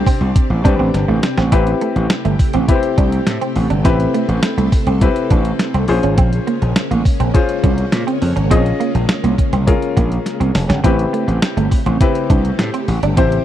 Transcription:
Already playing: C3 C4 D4 G4 C5 D5
0.06 C4, kick, open hi-hat
0.21 C2
0.36 muted clean electric guitar stroke, kick, closed hi-hat
0.50 A1
0.64 C2 C4 D4 G4 B4, kick, closed hi-hat
0.79 A1 C4
0.94 G1, snare, closed hi-hat
1.08 A1 A3
1.23 muted clean electric guitar stroke, snare, closed hi-hat
1.38 A1 C4, snare
1.52 A1 C3 A3 C4 E4 G4 B4, kick, closed hi-hat
1.67 closed hi-hat
1.81 A3, closed hi-hat
1.96 A1, muted clean electric guitar stroke, closed hi-hat
2.10 snare, closed hi-hat
2.25 G1 A3, closed hi-hat
2.39 muted clean electric guitar stroke, kick, open hi-hat
2.53 A1 C4, closed hi-hat
2.68 C4 E4 G4 B4, kick, closed hi-hat
2.75 C5
2.83 closed hi-hat
2.98 C2 D4, kick, closed hi-hat
3.12 closed hi-hat
3.27 A2, snare, closed hi-hat
3.41 C4, closed hi-hat
3.56 A1, muted clean electric guitar stroke, open hi-hat
3.70 G1 D4, closed hi-hat
3.84 A1 C4 E4 G4 A4 B4, kick, closed hi-hat
4.00 closed hi-hat
4.14 A3, closed hi-hat
4.28 A1, muted clean electric guitar stroke, closed hi-hat
4.43 snare, closed hi-hat
4.57 C2 A3, closed hi-hat
4.72 muted clean electric guitar stroke, kick, open hi-hat
4.87 C2 C4, closed hi-hat
5.01 C4 E4 G4 B4, kick, closed hi-hat
5.16 closed hi-hat
5.30 A1 D4, kick, closed hi-hat
5.45 closed hi-hat
5.59 snare, closed hi-hat
5.74 C2 C4, closed hi-hat
5.88 A#1 C#3 G#3 A#3 C#4 F4 G#4 C5, muted clean electric guitar stroke, open hi-hat
6.03 G#1 C#4, closed hi-hat
6.18 A#1 C4, kick, closed hi-hat
6.33 closed hi-hat
6.47 A#3, closed hi-hat
6.62 A#1, muted clean electric guitar stroke, closed hi-hat
6.76 snare, closed hi-hat
6.91 A1 A#3, closed hi-hat
7.05 muted clean electric guitar stroke, kick, open hi-hat
7.20 A#1 C4, closed hi-hat
7.34 C#4 F4 G#4 C5, kick, closed hi-hat
7.49 closed hi-hat
7.64 C2 C#4, kick, closed hi-hat
7.78 closed hi-hat
7.92 A#2, snare, closed hi-hat
8.07 C4, closed hi-hat
8.22 F2, muted clean electric guitar stroke, open hi-hat
8.36 G#1 C#4, closed hi-hat
8.50 A#1 C4 F4 G#4 D#5, kick, closed hi-hat
8.57 C#4
8.66 closed hi-hat
8.80 A#3, closed hi-hat
8.95 A#1, muted clean electric guitar stroke, closed hi-hat
9.09 snare, closed hi-hat
9.24 C2 A#3, closed hi-hat
9.38 muted clean electric guitar stroke, kick, closed hi-hat
9.53 C2 C4, closed hi-hat
9.67 C#4 F4 G#4 A#4, kick, closed hi-hat
9.82 closed hi-hat
9.97 A#1 A#3, kick, closed hi-hat
10.12 closed hi-hat
10.26 snare, closed hi-hat
10.40 C2 C4, closed hi-hat
10.55 F1, muted clean electric guitar stroke, snare, open hi-hat
10.69 G1 C#4, snare, closed hi-hat
10.84 A1 A3 C4 E4 G4 B4, kick, closed hi-hat
10.99 closed hi-hat
11.13 A3, closed hi-hat
11.28 A1, muted clean electric guitar stroke, closed hi-hat
11.42 snare, closed hi-hat
11.57 G1 A3, closed hi-hat
11.71 muted clean electric guitar stroke, kick, open hi-hat
11.86 A1 C4, closed hi-hat
12.01 C4 E4 G4 B4, kick, closed hi-hat
12.15 closed hi-hat
12.30 C2 D4, kick, closed hi-hat
12.45 closed hi-hat
12.59 A2, snare, closed hi-hat
12.74 C4, closed hi-hat
12.88 A1, muted clean electric guitar stroke, open hi-hat
13.02 G1 D4, closed hi-hat
13.17 A1 C4 E4 G4 C5, kick, closed hi-hat
13.32 closed hi-hat

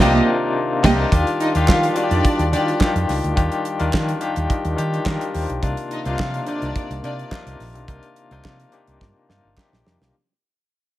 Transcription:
Already playing: D#3 A#3 C4 F4
0.00 C2 C3 A#3 D4 D#4 F4 G4 D#5, snare
0.83 C2 C3 A#3 D4 D#4 F4 G4 D#5, kick, snare, crash
1.12 D#2 D#3 G3 D4 F4 G4, kick, closed hi-hat
1.27 closed hi-hat
1.40 D#4 D#5, closed hi-hat
1.55 D#2 D#3 D4 F4 G4 F5, closed hi-hat
1.68 D#3, kick, snare, clap
1.83 closed hi-hat
1.96 D#3 D4 F4 F#4 D5, closed hi-hat
2.04 G4
2.11 F2, closed hi-hat
2.25 kick, closed hi-hat
2.39 D#2, closed hi-hat
2.52 D#3 D4 F4 G4 D5, closed hi-hat
2.68 closed hi-hat
2.80 D#3 D4 F4 G4, kick, snare, clap
2.95 F2, closed hi-hat
3.09 C#2, snare, open hi-hat
3.24 D2, closed hi-hat
3.36 D#2 D#3 D4 F4 G4, kick, closed hi-hat
3.52 closed hi-hat
3.65 closed hi-hat
3.79 D#2 D#3 D4 F4 A#4, closed hi-hat
3.93 D#3, kick, snare, clap
4.09 closed hi-hat
4.20 D#3 D4 F4 G4 F5, closed hi-hat
4.36 D#2, closed hi-hat
4.49 D#5, kick, closed hi-hat
4.65 D#2, closed hi-hat
4.77 D#3 D4 F4 G4, closed hi-hat
4.94 closed hi-hat
5.05 D#3 D4 F4 A#4 D#5, kick, snare, clap
5.21 closed hi-hat
5.34 D#2 C5, open hi-hat
5.49 B1, closed hi-hat
5.61 C2 C3 A#3 D4 D#4 F4, kick, closed hi-hat
5.77 closed hi-hat
5.91 D#4 D#5, closed hi-hat
6.05 C2 C3 A#3 D4 D#4 F4 F5, closed hi-hat
6.19 C3, kick, snare, clap
6.34 closed hi-hat
6.46 C3 A#3 D4 D#4 F4 D5, closed hi-hat
6.62 C2, closed hi-hat
6.76 kick, closed hi-hat
6.90 C2, closed hi-hat
7.03 C3 A#3 D4 D#4 F4 D5, closed hi-hat
7.19 closed hi-hat
7.31 C3 A#3 D4 D#4 F4, kick, snare, clap
7.46 C2, closed hi-hat
7.59 A#1, snare, open hi-hat
7.75 B1, closed hi-hat
7.87 C2 C3 A#3 C4 D4 D#4 F4, kick, closed hi-hat
8.03 closed hi-hat
8.16 closed hi-hat
8.31 C2 C3 A#3 D4 D#4 F4, closed hi-hat
8.45 C3, kick, snare, clap
8.60 closed hi-hat
8.72 C3 A#3 D4 D#4 G4, closed hi-hat
8.87 C2, closed hi-hat
9.01 G2, kick, snare
9.29 G2 C3 A#3 D4 D#4 F4, snare
9.45 G1
9.57 C3 A#3 D4 D#4 G4, kick, snare, clap
9.73 A#1, snare
9.86 F2, snare
10.01 B1, snare

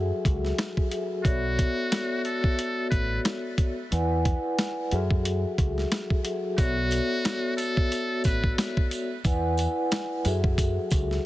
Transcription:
Already playing: F#2 F#3 F#4 G#4 A4 E5
0.25 C#2, kick, closed hi-hat
0.45 snare
0.58 snare, closed hi-hat
0.77 kick
0.90 F#3 F#4 G#4 A4 E5, closed hi-hat
1.24 B1 B3 F#4 A4 C#5 D5 E5, kick, closed hi-hat
1.59 kick, closed hi-hat
1.92 snare, closed hi-hat
2.25 A4, closed hi-hat
2.44 kick
2.59 closed hi-hat
2.90 A1 B4, kick, closed hi-hat
3.25 snare, closed hi-hat
3.58 kick, closed hi-hat
3.91 E2 E4 B4 D5 F#5 G#5, closed hi-hat
4.25 kick, closed hi-hat
4.59 snare, closed hi-hat
4.91 F#2 F#3 F#4 G#4 A4 E5, closed hi-hat
5.11 kick
5.25 closed hi-hat
5.58 C#2, kick, closed hi-hat
5.78 snare
5.92 snare, closed hi-hat
6.10 kick
6.24 F#3 F#4 G#4 A4 E5, closed hi-hat
6.57 B1 B3 F#4 A4 C#5 D5 E5, kick, closed hi-hat, sleigh bells
6.91 closed hi-hat, sleigh bells
7.25 snare, closed hi-hat, sleigh bells
7.57 A4, closed hi-hat, sleigh bells
7.77 kick
7.92 closed hi-hat, sleigh bells
8.24 A1 B4, kick, closed hi-hat, sleigh bells
8.44 kick
8.58 snare, closed hi-hat, sleigh bells
8.77 kick
8.91 closed hi-hat, sleigh bells
9.24 E2 E4 B4 D5 F#5 G#5, kick, closed hi-hat, sleigh bells
9.57 closed hi-hat, sleigh bells
9.91 snare, closed hi-hat, sleigh bells
10.25 F#2 F#3 F#4 G#4 A4 E5, closed hi-hat, sleigh bells
10.44 kick
10.58 kick, closed hi-hat, sleigh bells
10.90 C#2, kick, closed hi-hat, sleigh bells
11.11 snare

